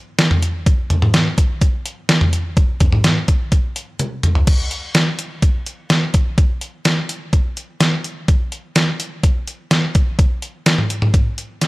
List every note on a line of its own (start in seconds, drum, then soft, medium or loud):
0.19 snare loud
0.19 closed hi-hat medium
0.31 mid tom medium
0.42 closed hi-hat medium
0.66 kick loud
0.66 closed hi-hat medium
0.90 closed hi-hat medium
0.90 mid tom medium
1.02 mid tom medium
1.14 snare loud
1.14 closed hi-hat medium
1.38 kick medium
1.38 closed hi-hat medium
1.61 kick medium
1.61 closed hi-hat medium
1.86 closed hi-hat medium
2.09 snare loud
2.09 closed hi-hat medium
2.21 mid tom medium
2.33 closed hi-hat medium
2.57 kick loud
2.57 closed hi-hat medium
2.80 kick medium
2.80 closed hi-hat medium
2.80 mid tom medium
2.92 mid tom medium
3.04 snare loud
3.04 closed hi-hat medium
3.28 kick medium
3.28 closed hi-hat medium
3.52 kick medium
3.52 closed hi-hat medium
3.76 closed hi-hat medium
3.99 closed hi-hat medium
3.99 high tom medium
4.23 closed hi-hat medium
4.23 mid tom medium
4.35 floor tom medium
4.47 kick loud
4.47 closed hi-hat medium
4.47 crash medium
4.71 closed hi-hat medium
4.95 snare loud
4.95 closed hi-hat medium
5.19 closed hi-hat medium
5.42 kick medium
5.42 closed hi-hat medium
5.66 closed hi-hat medium
5.90 snare loud
5.90 closed hi-hat medium
6.14 kick medium
6.14 closed hi-hat medium
6.38 kick loud
6.38 closed hi-hat medium
6.61 closed hi-hat medium
6.85 snare loud
6.85 closed hi-hat medium
7.09 closed hi-hat medium
7.33 kick medium
7.33 closed hi-hat medium
7.57 closed hi-hat medium
7.80 snare loud
7.80 closed hi-hat medium
8.04 closed hi-hat medium
8.28 kick loud
8.28 closed hi-hat medium
8.52 closed hi-hat medium
8.76 snare loud
8.76 closed hi-hat medium
9.00 closed hi-hat medium
9.23 kick medium
9.23 closed hi-hat medium
9.48 closed hi-hat medium
9.71 snare loud
9.71 closed hi-hat medium
9.95 kick medium
9.95 closed hi-hat medium
10.19 kick loud
10.19 closed hi-hat medium
10.42 closed hi-hat medium
10.66 snare loud
10.66 closed hi-hat medium
10.78 mid tom medium
10.90 closed hi-hat medium
11.02 mid tom medium
11.14 kick medium
11.14 closed hi-hat medium
11.38 closed hi-hat medium
11.61 snare medium
11.61 closed hi-hat medium